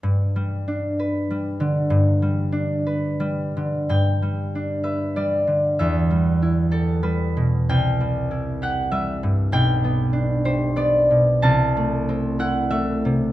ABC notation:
X:1
M:3/4
L:1/8
Q:1/4=96
K:G
V:1 name="Harp"
z6 | z6 | g3 e d2 | e3 A B2 |
g3 f e2 | g3 c d2 | a3 f e2 |]
V:2 name="Harp" clef=bass
G,, G, D B G, D, | G,, G, D B G, D, | G,, G, D B G, D, | E,, G, E G G, B,, |
C,, G, E G G, G,, | B,,, B, D G B, B,, | C,, A, C E A, C, |]